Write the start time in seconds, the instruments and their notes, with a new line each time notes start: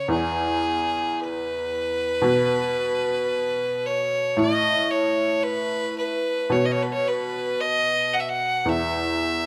0.08 upright piano E2, fiddle G#4
1.20 fiddle B4
2.22 upright piano B2
3.86 fiddle C#5
4.37 upright piano A2, fiddle D#5
4.90 fiddle C#5
5.43 fiddle B4
5.98 fiddle B4
6.50 upright piano B2, fiddle C#5
6.65 fiddle D#5
6.72 fiddle C#5
6.83 fiddle B4
6.92 fiddle C#5
7.08 fiddle B4
7.60 fiddle D#5
8.13 fiddle F#5
8.20 fiddle E5
8.29 fiddle F#5
8.65 upright piano E2, fiddle E5